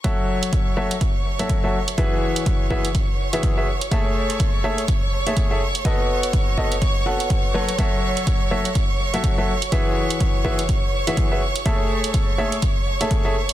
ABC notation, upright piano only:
X:1
M:4/4
L:1/16
Q:"Swing 16ths" 1/4=124
K:F#m
V:1 name="Upright piano"
[F,FAce]6 [F,FAce] z4 [F,FAce]2 [F,FAce] z2 | [E,FGBe]6 [E,FGBe] z4 [E,FGBe]2 [FGBe] z2 | [A,GAce]6 [A,GAce] z4 [A,GAce]2 [GAce] z2 | [B,FAB^d]6 [B,FABd] z3 [B,FABf]4 [F,FABc] z |
[F,FAce]6 [F,FAce] z4 [F,FAce]2 [F,FAce] z2 | [E,FGBe]6 [E,FGBe] z4 [E,FGBe]2 [FGBe] z2 | [A,GAce]6 [A,GAce] z4 [A,GAce]2 [GAce] z2 |]